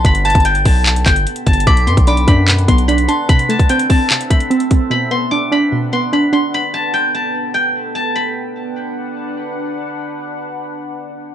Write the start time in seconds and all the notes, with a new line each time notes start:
Already playing: C6
0.05 G1 B3 A4 G5 B5, kick, closed hi-hat
0.15 closed hi-hat
0.25 A5, closed hi-hat
0.30 closed hi-hat
0.35 G1, kick, closed hi-hat
0.40 closed hi-hat
0.45 G5, closed hi-hat
0.55 closed hi-hat
0.65 B1 A5, kick, open hi-hat
0.86 clap, closed hi-hat
0.96 closed hi-hat
1.05 G1 G5, kick, clap, closed hi-hat
1.16 closed hi-hat
1.27 closed hi-hat
1.36 closed hi-hat
1.46 G1 A5, kick, closed hi-hat
1.53 closed hi-hat
1.60 closed hi-hat
1.67 B1 B2 D4 B4 F#5 B5 D6, kick, closed hi-hat
1.77 closed hi-hat
1.87 F#2 B3 C6, closed hi-hat
1.97 B1, kick, closed hi-hat
2.07 D4 B5 D6, closed hi-hat
2.17 closed hi-hat
2.27 F#2 D4 B5, kick, closed hi-hat
2.48 B2, clap, closed hi-hat
2.58 closed hi-hat
2.68 B1 B3 C6, kick, closed hi-hat
2.78 closed hi-hat
2.88 D4 B5, closed hi-hat
2.98 closed hi-hat
3.08 D4 A5 C6, closed hi-hat
3.29 C3 C4 A4 E5 B5, kick, closed hi-hat
3.39 closed hi-hat
3.49 A3 A5, closed hi-hat
3.59 kick, closed hi-hat
3.69 C4 G5, closed hi-hat
3.79 closed hi-hat
3.90 C4 A5, kick, open hi-hat
4.10 C3, clap, closed hi-hat
4.21 closed hi-hat
4.30 A3 B5, kick, closed hi-hat
4.40 closed hi-hat
4.50 C4, closed hi-hat
4.60 closed hi-hat
4.71 C4, kick, closed hi-hat
4.90 B2 D4 B4 F#5 B5
5.11 B3 C6
5.31 D4 D6
5.52 D4 B5
5.72 B2
5.93 B3 C6
6.13 D4 B5
6.33 D4 C6
6.53 B3 A4 G5 B5
6.74 A5
6.94 G5
7.15 A5
7.54 G5
7.95 A5
8.15 D4 B4 F#5 B5